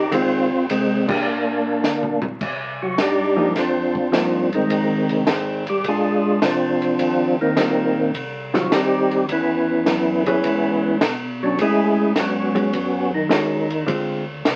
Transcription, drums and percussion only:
0.12 kick soft
0.12 ride medium
0.69 kick soft
0.69 hi-hat pedal medium
0.69 ride medium
1.08 kick medium
1.08 crash medium
1.84 snare medium
1.84 hi-hat pedal medium
2.03 floor tom medium
2.22 floor tom medium
2.41 kick medium
2.41 crash medium
2.98 kick soft
2.98 snare medium
2.98 hi-hat pedal medium
2.98 ride medium
3.55 kick soft
3.55 snare soft
3.55 ride medium
3.95 kick medium
4.13 kick soft
4.13 snare medium
4.13 hi-hat pedal medium
4.13 ride medium
4.53 ride soft
4.70 kick soft
4.70 ride medium
5.09 ride soft
5.27 kick soft
5.27 snare medium
5.27 hi-hat pedal medium
5.27 ride medium
5.67 ride soft
5.84 kick soft
5.84 ride medium
6.42 kick soft
6.42 snare medium
6.42 hi-hat pedal medium
6.42 ride medium
6.82 ride soft
6.99 kick soft
6.99 ride medium
7.57 kick soft
7.57 snare medium
7.57 hi-hat pedal medium
7.57 ride medium
8.14 kick soft
8.14 ride medium
8.54 snare soft
8.72 kick soft
8.72 snare medium
8.72 hi-hat pedal medium
8.72 ride medium
9.11 ride soft
9.29 kick soft
9.29 ride medium
9.86 kick soft
9.86 snare medium
9.86 hi-hat pedal soft
9.86 ride medium
10.26 ride soft
10.44 kick soft
10.44 ride medium
11.01 kick soft
11.01 snare medium
11.01 hi-hat pedal soft
11.01 ride medium
11.58 kick soft
11.58 ride medium
12.16 kick soft
12.16 snare medium
12.16 hi-hat pedal medium
12.16 ride medium
12.55 ride soft
12.73 kick soft
12.73 ride medium
13.30 kick soft
13.30 snare medium
13.30 hi-hat pedal medium
13.30 ride medium
13.70 ride soft
13.88 kick soft
13.88 ride medium
14.45 kick soft
14.45 snare medium
14.45 hi-hat pedal medium
14.45 ride medium

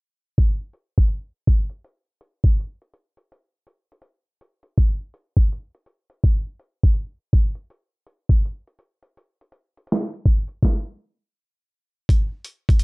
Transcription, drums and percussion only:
0.38 kick loud
0.38 closed hi-hat medium
0.73 closed hi-hat medium
0.98 kick medium
0.98 closed hi-hat soft
1.08 closed hi-hat medium
1.47 kick medium
1.47 closed hi-hat medium
1.70 closed hi-hat soft
1.84 closed hi-hat medium
2.21 closed hi-hat medium
2.44 kick medium
2.44 closed hi-hat soft
2.60 closed hi-hat medium
2.82 closed hi-hat soft
2.94 closed hi-hat medium
3.17 closed hi-hat soft
3.32 closed hi-hat medium
3.67 closed hi-hat medium
3.92 closed hi-hat soft
4.02 closed hi-hat medium
4.41 closed hi-hat medium
4.63 closed hi-hat soft
4.78 kick medium
4.78 closed hi-hat medium
5.14 closed hi-hat medium
5.37 kick medium
5.37 closed hi-hat soft
5.52 closed hi-hat medium
5.75 closed hi-hat soft
5.86 closed hi-hat medium
6.10 closed hi-hat soft
6.24 kick loud
6.24 closed hi-hat medium
6.59 closed hi-hat medium
6.83 kick medium
6.83 closed hi-hat soft
6.94 closed hi-hat medium
7.33 kick medium
7.33 closed hi-hat medium
7.55 closed hi-hat soft
7.70 closed hi-hat medium
8.07 closed hi-hat medium
8.29 kick medium
8.29 closed hi-hat soft
8.46 closed hi-hat medium
8.67 closed hi-hat soft
8.79 closed hi-hat medium
9.03 closed hi-hat soft
9.17 closed hi-hat medium
9.41 closed hi-hat soft
9.52 closed hi-hat medium
9.77 closed hi-hat soft
9.87 closed hi-hat medium
9.92 snare loud
10.14 closed hi-hat soft
10.26 kick medium
10.26 closed hi-hat medium
10.48 closed hi-hat soft
10.63 kick loud
10.63 snare medium
12.09 kick loud
12.09 closed hi-hat medium
12.45 closed hi-hat medium
12.69 kick medium
12.69 closed hi-hat soft
12.79 closed hi-hat medium

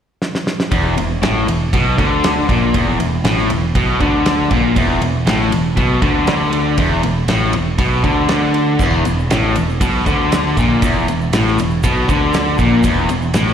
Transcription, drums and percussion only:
0.22 snare medium
0.35 snare medium
0.47 snare medium
0.60 snare loud
0.71 kick loud
0.71 ride loud
0.98 ride medium
1.23 snare loud
1.23 ride loud
1.48 ride medium
1.73 kick loud
1.73 ride loud
1.98 kick loud
1.98 ride medium
2.24 snare loud
2.24 ride loud
2.49 kick loud
2.49 ride medium
2.74 kick loud
2.74 ride medium
3.00 ride medium
3.25 snare loud
3.25 ride loud
3.38 snare soft
3.50 ride medium
3.75 kick loud
3.75 ride medium
4.00 kick loud
4.00 ride medium
4.26 snare loud
4.26 ride loud
4.51 kick loud
4.51 ride medium
4.76 kick loud
4.76 ride medium
5.02 ride medium
5.27 snare loud
5.27 ride loud
5.52 ride medium
5.77 kick loud
5.77 ride loud
6.02 kick loud
6.02 ride medium
6.27 snare loud
6.27 ride loud
6.53 ride medium
6.78 kick loud
6.78 ride loud
7.03 ride medium
7.28 snare loud
7.28 ride loud
7.53 ride medium
7.78 kick loud
7.78 ride medium
8.04 kick medium
8.04 ride medium
8.29 snare loud
8.29 ride medium
8.54 ride medium
8.79 kick loud
8.79 crash medium
8.79 shaker medium
9.05 ride medium
9.05 shaker medium
9.19 shaker soft
9.31 snare loud
9.31 ride medium
9.31 shaker medium
9.55 ride medium
9.55 shaker medium
9.70 shaker soft
9.81 kick loud
9.81 ride loud
9.81 shaker medium
10.06 kick medium
10.06 ride medium
10.06 shaker medium
10.32 snare loud
10.32 ride loud
10.32 shaker medium
10.57 kick loud
10.57 ride medium
10.57 shaker medium
10.82 kick loud
10.82 ride loud
10.82 shaker loud
11.08 ride medium
11.08 shaker medium
11.21 shaker soft
11.33 snare loud
11.33 ride loud
11.33 shaker loud
11.47 snare soft
11.58 ride medium
11.58 shaker medium
11.71 shaker soft
11.83 kick loud
11.83 ride loud
11.83 shaker loud
12.09 kick loud
12.09 ride medium
12.09 shaker medium
12.33 snare loud
12.33 ride medium
12.33 shaker medium
12.58 kick loud
12.58 ride medium
12.58 shaker medium
12.83 kick loud
12.83 ride medium
12.83 shaker loud
13.09 ride medium
13.09 shaker medium
13.22 shaker soft
13.34 snare loud
13.34 ride medium
13.34 shaker medium
13.47 snare soft

